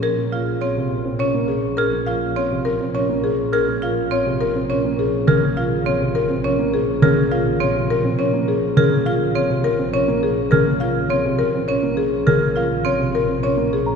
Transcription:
<<
  \new Staff \with { instrumentName = "Celesta" } { \time 3/4 \key bes \minor \tempo 4 = 103 r2. | f'''16 r2 r8. | f'''16 r2 r8. | f'''16 r2 r8. |
f'''16 r2 r8. | f'''16 r2 r8. | f'''16 r2 r8. | f'''16 r2 r8 bes''16 | }
  \new Staff \with { instrumentName = "Marimba" } { \time 3/4 \key bes \minor bes'16 r16 f''16 r16 des''16 r8. des''16 r16 aes'16 r16 | bes'16 r16 f''16 r16 des''16 r16 bes'16 r16 des''16 r16 aes'16 r16 | bes'16 r16 f''16 r16 des''16 r16 bes'16 r16 des''16 r16 aes'16 r16 | bes'16 r16 f''16 r16 des''16 r16 bes'16 r16 des''16 r16 aes'16 r16 |
bes'16 r16 f''16 r16 des''16 r16 bes'16 r16 des''16 r16 aes'16 r16 | bes'16 r16 f''16 r16 des''16 r16 bes'16 r16 des''16 r16 aes'16 r16 | bes'16 r16 f''16 r16 des''16 r16 bes'16 r16 des''16 r16 aes'16 r16 | bes'16 r16 f''16 r16 des''16 r16 bes'16 r16 des''16 r16 aes'16 r16 | }
  \new Staff \with { instrumentName = "Marimba" } { \time 3/4 \key bes \minor aes'16 r16 f'16 r16 c'16 r8. des'16 r8. | aes'16 r16 f'16 r16 c'16 r8. des'16 r8. | aes'16 r16 f'16 r16 c'16 r8. des'16 r8. | aes'16 r16 f'16 r16 c'16 r8. des'16 r8. |
aes'16 r16 f'16 r16 c'16 r8. des'16 r8. | aes'16 r16 f'16 r16 c'16 r8. des'16 r8. | aes'16 r16 f'16 r16 c'16 r8. des'16 r8. | aes'16 r16 f'16 r16 c'16 r8. des'16 r8. | }
  \new Staff \with { instrumentName = "Grand piano" } { \time 3/4 \key bes \minor r16 bes16 r8. c16 r16 c'16 r16 bes16 r8 | r16 bes16 r8. c16 r16 c'16 r16 bes16 r8 | r16 bes16 r8. c16 r16 c'16 r16 bes16 r8 | des16 bes16 r8. c16 r16 c'16 r16 bes16 r8 |
des16 bes16 r8. c16 r16 c'16 r16 bes16 r8 | des16 bes16 r8. c16 r16 c'16 r16 bes16 r8 | des16 bes16 r8. c16 r16 c'16 r16 bes16 r8 | des16 bes16 r8. c16 r16 c'16 r16 bes16 r8 | }
  \new Staff \with { instrumentName = "Double bass section" } { \clef bass \time 3/4 \key bes \minor bes,,2.~ | bes,,2.~ | bes,,2.~ | bes,,2.~ |
bes,,2.~ | bes,,2.~ | bes,,2.~ | bes,,2. | }
>>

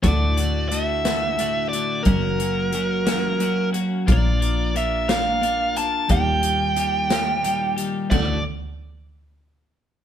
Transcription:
<<
  \new Staff \with { instrumentName = "Lead electric guitar" } { \time 6/8 \key fis \phrygian \tempo 4. = 60 d''4 e''4. d''8 | ais'2~ ais'8 r8 | d''4 e''8 f''4 a''8 | g''2~ g''8 r8 |
d''8 r2 r8 | }
  \new Staff \with { instrumentName = "Clean electric guitar" } { \time 6/8 \key fis \phrygian <d, a, d a fis'>8 <d a fis'>8 <a, d a fis'>8 <d a fis'>8 <a, d a fis'>8 <d a fis'>8 | <fis, cis fis ais cis' fis'>8 <fis ais cis' fis'>8 <fis ais cis' fis'>8 <fis ais cis' fis'>8 <fis ais cis' fis'>8 <fis ais cis' fis'>8 | <bes, f bes d' f' bes'>8 <bes d' f' bes'>8 <bes d' f' bes'>8 <bes d' f' bes'>8 <bes d' f' bes'>8 <bes d' f' bes'>8 | <ees, bes, ees g g'>8 <ees g g'>8 <bes, ees g g'>8 <ees g g'>8 <bes, ees g g'>8 <ees g g'>8 |
<d, a, d a fis'>8 r2 r8 | }
  \new Staff \with { instrumentName = "Double bass" } { \clef bass \time 6/8 \key fis \phrygian d,2. | fis,,2. | bes,,2. | ees,2. |
d,8 r2 r8 | }
  \new DrumStaff \with { instrumentName = "Drums" } \drummode { \time 6/8 <hh bd>8 hh8 hh8 <hh sn>8 hh8 hh8 | <hh bd>8 hh8 hh8 <hh sn>8 hh8 hh8 | <hh bd>8 hh8 hh8 <hh sn>8 hh8 hh8 | <hh bd>8 hh8 hh8 <hh sn>8 hh8 hh8 |
<cymc bd tomfh>4. r4. | }
>>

